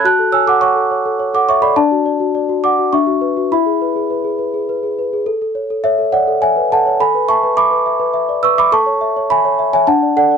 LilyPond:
\new Staff \with { instrumentName = "Celesta" } { \time 3/4 \key a \major \tempo 4 = 104 << { <a'' fis'''>8 <gis'' e'''>16 <fis'' d'''>16 <fis'' cis'''>4~ <fis'' cis'''>16 <fis'' d'''>16 <e'' cis'''>16 <d'' b''>16 | <d'' a''>4. <fis'' d'''>8 <e'' cis'''>4 | <e'' b''>2 r4 | r4 <cis'' e''>8 <d'' fis''>8 <e'' gis''>8 <fis'' a''>8 |
<gis'' b''>8 <a'' cis'''>8 <b'' d'''>4. <cis''' e'''>16 <b'' d'''>16 | <a'' cis'''>4 <gis'' b''>8. <e'' gis''>16 <fis'' a''>8 <d'' fis''>8 | } \\ { fis'16 a'16 cis''16 a'16 cis''16 a'16 cis''16 a'16 cis''16 a'16 cis''16 a'16 | d'16 fis'16 d''16 fis'16 d''16 fis'16 d''16 fis'16 d'16 fis'16 b'16 fis'16 | e'16 gis'16 b'16 gis'16 b'16 gis'16 b'16 gis'16 b'16 gis'16 b'16 gis'16 | a'16 a'16 cis''16 a'8 a'16 cis''16 a'16 cis''16 b'16 a'16 cis''16 |
a'16 b'16 e''16 b'16 e''16 b'16 e''16 b'16 e''16 d''16 b'16 e''16 | a'16 cis''16 e''16 cis''16 e''16 cis''16 e''16 cis''16 d'16 d''16 a'16 d''16 | } >> }